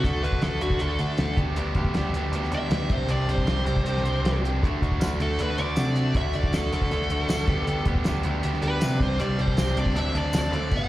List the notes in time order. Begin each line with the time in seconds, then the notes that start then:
0.04 D2 A3 D4 F#4 A4, kick, closed hi-hat
0.23 D2 A3 D4 F#4 B4, closed hi-hat
0.33 kick
0.42 D2 A3 D4 F#4 A4, snare, closed hi-hat
0.61 D2 A3 D4 F#4, closed hi-hat
0.70 kick
0.79 D2 A3 D4 F#4 A4, closed hi-hat
0.99 D2 A3 D4 F#4 A4, closed hi-hat
1.18 D2 A3 D4 F#4, snare, closed hi-hat
1.37 D2 B3 D4 G4, kick, closed hi-hat
1.56 D2 B3 D4 G4, closed hi-hat
1.75 D2 B3 D4 G4, kick, closed hi-hat
1.85 kick
1.94 D2 B3 D4 G4, snare, closed hi-hat
2.12 D2 B3 D4 G4, closed hi-hat
2.31 D2 B3, closed hi-hat
2.36 D4 G4
2.44 snare
2.51 D2 B3 D4 G4 E5, closed hi-hat
2.69 D2 B3 D4 G4, snare, closed hi-hat
2.90 C2 C4 D4 G4 C5, kick, closed hi-hat
3.08 C2 C4 D4 G4 D5, closed hi-hat
3.28 C2 C4 D4 G4 C5, closed hi-hat
3.38 kick
3.46 C2 C4 D4 G4, snare, closed hi-hat
3.65 C2 C4 D4 G4, closed hi-hat
3.77 kick
3.84 C2 C4 D4, closed hi-hat
3.88 G4
3.97 snare
4.03 C2 C4, closed hi-hat
4.07 D4 G4
4.22 C2 C4 D4, closed hi-hat
4.26 G4, snare
4.42 C2 C4 D4 G4, closed hi-hat
4.63 D2 A3 D4 F#4, kick, closed hi-hat
4.82 D2 A3 D4 F#4, kick, closed hi-hat
4.92 kick
5.00 D2 A3 D4 F#4, snare, closed hi-hat, tambourine
5.20 D2 A3 D4 F#4 A4, closed hi-hat
5.39 D2 A3 D4 F#4 B4, closed hi-hat
5.49 snare
5.58 D2 A3 D4 F#4 D5, closed hi-hat
5.76 C3 A3 D4 F#4, snare, closed hi-hat, tambourine
5.96 A3 D4 F#4, closed hi-hat
6.15 D2 A3 D4 F#4 E5, kick, closed hi-hat
6.33 D2 A3 D4 F#4 D5, closed hi-hat
6.44 kick
6.53 D2 A3 D4 F#4 A4, snare, closed hi-hat, tambourine
6.72 D2 A3 D4 F#4 A4, closed hi-hat
6.82 kick
6.91 D2 A3 D4 F#4, closed hi-hat
7.01 snare
7.10 D2 A3 D4 F#4, closed hi-hat
7.28 D2 A3 D4 F#4, snare, closed hi-hat, tambourine
7.47 D2 B3 D4 G4, kick, closed hi-hat
7.67 D2 B3 D4 G4, closed hi-hat
7.85 D2 B3 D4 G4, kick, closed hi-hat
7.95 kick
8.04 D2 B3 D4, snare, closed hi-hat, tambourine
8.09 G4
8.23 D2 B3 D4 G4, closed hi-hat
8.43 D2 B3 D4 G4, closed hi-hat
8.54 snare
8.61 D2 B3 D4 G4 B4, closed hi-hat
8.81 C3 B3 D4 G4, snare, closed hi-hat, tambourine
9.00 C2 G3 C4 D4 G4 C5, kick, closed hi-hat
9.19 C2 G3 C4 D4 G4 D5, closed hi-hat
9.39 C2 G3 C4 D4 G4 C5, closed hi-hat
9.48 kick
9.57 C2 G3 C4 D4 G4, snare, closed hi-hat, tambourine
9.77 C2 G3 C4 D4 G4 D5, closed hi-hat
9.86 kick
9.95 D2 F#3 C4 D4 A4 E5, closed hi-hat
10.14 D2 F#3 C4 D4 A4 D5, closed hi-hat
10.33 D2 F#3 C4 D4 A4, snare, closed hi-hat, tambourine
10.39 D5
10.52 D2 F#3 C4 D4 A4, closed hi-hat
10.71 G1 B3, kick, crash
10.77 F#5